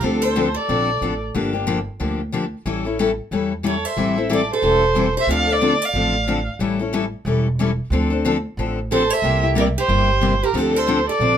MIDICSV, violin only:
0, 0, Header, 1, 2, 480
1, 0, Start_track
1, 0, Key_signature, -1, "minor"
1, 0, Tempo, 328767
1, 44, Time_signature, 4, 2, 24, 8
1, 16609, End_track
2, 0, Start_track
2, 0, Title_t, "Violin"
2, 0, Program_c, 0, 40
2, 62, Note_on_c, 0, 69, 86
2, 326, Note_on_c, 0, 72, 86
2, 348, Note_off_c, 0, 69, 0
2, 815, Note_on_c, 0, 74, 93
2, 837, Note_off_c, 0, 72, 0
2, 1769, Note_off_c, 0, 74, 0
2, 5345, Note_on_c, 0, 73, 74
2, 5626, Note_on_c, 0, 76, 85
2, 5648, Note_off_c, 0, 73, 0
2, 6094, Note_off_c, 0, 76, 0
2, 6331, Note_on_c, 0, 74, 82
2, 6569, Note_off_c, 0, 74, 0
2, 6629, Note_on_c, 0, 72, 103
2, 7496, Note_off_c, 0, 72, 0
2, 7601, Note_on_c, 0, 76, 97
2, 7747, Note_off_c, 0, 76, 0
2, 7784, Note_on_c, 0, 77, 105
2, 8068, Note_on_c, 0, 74, 105
2, 8090, Note_off_c, 0, 77, 0
2, 8540, Note_on_c, 0, 77, 102
2, 8561, Note_off_c, 0, 74, 0
2, 9470, Note_off_c, 0, 77, 0
2, 13022, Note_on_c, 0, 72, 92
2, 13327, Note_on_c, 0, 76, 112
2, 13349, Note_off_c, 0, 72, 0
2, 13785, Note_off_c, 0, 76, 0
2, 14005, Note_on_c, 0, 74, 82
2, 14122, Note_off_c, 0, 74, 0
2, 14294, Note_on_c, 0, 72, 110
2, 15258, Note_on_c, 0, 70, 89
2, 15279, Note_off_c, 0, 72, 0
2, 15441, Note_on_c, 0, 69, 91
2, 15463, Note_off_c, 0, 70, 0
2, 15720, Note_on_c, 0, 72, 99
2, 15742, Note_off_c, 0, 69, 0
2, 16183, Note_off_c, 0, 72, 0
2, 16195, Note_on_c, 0, 74, 97
2, 16609, Note_off_c, 0, 74, 0
2, 16609, End_track
0, 0, End_of_file